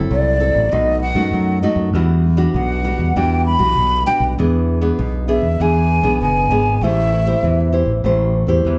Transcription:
Already playing: nylon-string guitar C4 E4 A4
0.11 fingered electric bass C2, nylon-string guitar F#3, flute D5
0.40 nylon-string guitar C4 E4 A4
0.54 fingered electric bass A1
0.71 fingered electric bass B1, nylon-string guitar B2 A3 D#4 F#4, flute D#5
1.01 flute F#5
1.15 fingered electric bass F#2, nylon-string guitar A3 D#4 F#4
1.33 fingered electric bass F#2, nylon-string guitar F#3
1.62 nylon-string guitar A3 D#4 F#4, flute D#5
1.76 fingered electric bass F#2
1.93 fingered electric bass E2, nylon-string guitar E3 G3 D4 F#4
2.37 nylon-string guitar G3 D4 F#4
2.54 fingered electric bass B1, nylon-string guitar B2, flute F#5
2.84 nylon-string guitar G3 D4 F#4
2.98 fingered electric bass E2
3.16 fingered electric bass E2, nylon-string guitar E3 G3 D4 F#4, flute G5
3.46 flute B5
3.59 fingered electric bass B1, nylon-string guitar G3 D4 F#4
3.77 fingered electric bass B1, nylon-string guitar B2
4.06 nylon-string guitar G3 D4 F#4, flute G5
4.20 fingered electric bass B1
4.38 fingered electric bass E2, nylon-string guitar E3 B3 D4 G#4
4.81 nylon-string guitar B3 D4 G#4
4.99 fingered electric bass B1, nylon-string guitar B2
5.28 nylon-string guitar B3 D4 G#4, flute E5
5.42 fingered electric bass E2
5.60 fingered electric bass E2, nylon-string guitar E3 B3 D4 G#4, flute G#5
6.03 fingered electric bass B1, nylon-string guitar B3 D4 G#4
6.21 fingered electric bass F#1, nylon-string guitar B2, flute G#5
6.50 fingered electric bass G#1, nylon-string guitar B3 D4 G#4
6.81 fingered electric bass A1, nylon-string guitar A3 E4 G4 C5, flute E5
7.27 nylon-string guitar E4 G4 C5
7.43 fingered electric bass E2, nylon-string guitar E3
7.72 nylon-string guitar E4 G4 C5
7.86 fingered electric bass A1
8.04 fingered electric bass A1, nylon-string guitar A3 E4 G4 C5
8.47 fingered electric bass E2, nylon-string guitar E4 G4 C5
8.65 fingered electric bass E2, nylon-string guitar E3

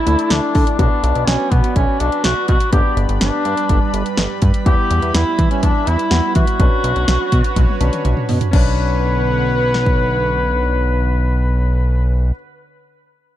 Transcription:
Already playing: duduk E4, analog synth pad E4 A4 D5 A5
0.07 analog synth bass D2, grand piano A3 D4 E4, closed hi-hat
0.19 closed hi-hat
0.30 analog synth bass D2, duduk D4, snare, closed hi-hat
0.55 analog synth bass D3, kick, open hi-hat
0.67 closed hi-hat
0.79 analog synth bass B1, grand piano B3 D4 F#4, duduk D4, analog synth pad F#4 B4 B5, kick, closed hi-hat
1.03 analog synth bass B1, closed hi-hat
1.15 analog synth bass B1, closed hi-hat
1.27 analog synth bass B1, duduk C#4, snare, closed hi-hat
1.52 analog synth bass B2, duduk B3, kick, closed hi-hat
1.64 closed hi-hat
1.76 analog synth bass B1, duduk C#4, kick, closed hi-hat
2.00 analog synth bass B1, duduk D4, closed hi-hat
2.12 closed hi-hat
2.24 analog synth bass B1, duduk F#4, snare, closed hi-hat
2.48 analog synth bass B2, duduk F#4, kick, closed hi-hat
2.60 closed hi-hat
2.73 analog synth bass G1, analog synth pad G3, grand piano B3 D4 G4, duduk G4, kick, closed hi-hat
2.97 analog synth bass G1, closed hi-hat
3.09 analog synth bass G1, closed hi-hat
3.21 analog synth bass G1, duduk D4, snare, closed hi-hat
3.45 analog synth bass G2, closed hi-hat
3.57 closed hi-hat
3.69 analog synth bass G1, kick, closed hi-hat
3.94 analog synth bass G1, closed hi-hat
4.06 closed hi-hat
4.17 analog synth bass G1, snare, closed hi-hat
4.42 analog synth bass G2, kick, closed hi-hat
4.54 closed hi-hat
4.66 analog synth bass E2, grand piano B3 E4 G4, duduk G4, analog synth pad E5, kick, closed hi-hat
4.90 analog synth bass E2, closed hi-hat
5.02 analog synth bass E2, closed hi-hat
5.14 analog synth bass E2, duduk E4, snare, closed hi-hat
5.39 analog synth bass E3, kick, closed hi-hat
5.51 duduk C#4, closed hi-hat
5.63 analog synth bass E2, duduk D4, kick, closed hi-hat
5.87 analog synth bass E2, duduk E4, closed hi-hat
5.99 closed hi-hat
6.11 analog synth bass E2, grand piano B3 E4 F#4, snare, closed hi-hat
6.35 analog synth bass E3, duduk F#4, kick, closed hi-hat
6.47 closed hi-hat
6.60 analog synth bass B1, grand piano C#4 D4 B4, analog synth pad F#4 B4 C#5, kick, closed hi-hat
6.84 analog synth bass B1, closed hi-hat
6.96 analog synth bass B1, closed hi-hat
7.08 analog synth bass B1, snare, closed hi-hat
7.32 analog synth bass B2, kick, closed hi-hat
7.44 closed hi-hat
7.56 analog synth bass B1, kick, closed hi-hat, high tom
7.68 high tom
7.81 analog synth bass B1, grand piano C#4 D4 B4, closed hi-hat, mid tom
7.93 closed hi-hat, mid tom
8.05 analog synth bass B1, closed hi-hat, mid tom
8.17 mid tom
8.29 analog synth bass B2, floor tom, open hi-hat
8.41 closed hi-hat, floor tom
8.51 analog synth bass B1, analog synth pad D3 B4 C#5 F#5, grand piano C#4 D4 B4, duduk B4, kick, crash
9.74 snare
9.86 kick

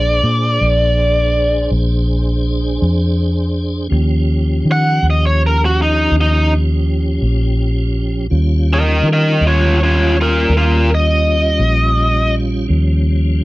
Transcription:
Already playing: fingered electric bass A#1, tonewheel organ D4 G#4 C5, lead electric guitar D5
0.24 fingered electric bass A#2
0.61 fingered electric bass A#1
1.71 fingered electric bass A#1
2.82 fingered electric bass F2
3.89 fingered electric bass D#2, tonewheel organ F3 C#4 G4
4.65 fingered electric bass D#3
4.72 lead electric guitar F#5
5.03 fingered electric bass D#2
5.10 lead electric guitar D#5
5.26 lead electric guitar C#5
5.46 lead electric guitar A#4
5.65 lead electric guitar F#4
5.82 lead electric guitar D#4
6.12 fingered electric bass D#2
6.21 lead electric guitar D#4
7.22 fingered electric bass A#1
8.30 fingered electric bass D#2, tonewheel organ G3 C#4 F4
8.73 lead electric guitar A#4 D#5
9.04 fingered electric bass D#3
9.13 lead electric guitar A#4 D#5
9.41 fingered electric bass D#2
9.47 lead electric guitar F4 C#5
9.83 lead electric guitar F4 C#5
10.21 lead electric guitar F4 A#4
10.50 fingered electric bass D#2
10.57 lead electric guitar F4 A#4
10.95 lead electric guitar D#5
11.59 fingered electric bass A#1
12.68 fingered electric bass D#2, tonewheel organ F3 G3 C#4

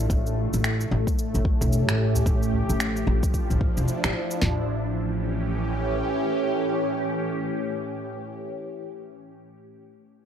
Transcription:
Already playing: synth drone A2 A3
0.10 upright bass A1, kick, cabasa
0.26 cabasa
0.53 upright bass A1, cabasa
0.64 finger snap, cabasa
0.81 cabasa
0.91 upright bass A1
1.07 synth drone C#4 G4, kick, cabasa
1.19 cabasa
1.34 upright bass A1, cabasa
1.45 kick
1.61 upright bass E1, kick, cabasa
1.73 cabasa
1.89 upright bass A1, finger snap, cabasa
2.15 udu, cabasa
2.26 upright bass A1, synth drone F3, kick, cabasa
2.43 cabasa
2.53 udu
2.69 upright bass A1, cabasa
2.80 finger snap, cabasa
2.97 cabasa
3.07 upright bass A1
3.19 synth drone D4
3.23 synth drone E4, kick, cabasa
3.34 kick, cabasa
3.50 upright bass A1, udu, cabasa
3.61 kick
3.77 upright bass E1, cabasa
3.88 cabasa
4.04 upright bass A1, finger snap, cabasa
4.31 cabasa
4.42 upright bass A1, synth drone A2, snare, floor tom
4.51 synth drone E3
4.60 synth drone C#4
4.66 synth drone G4

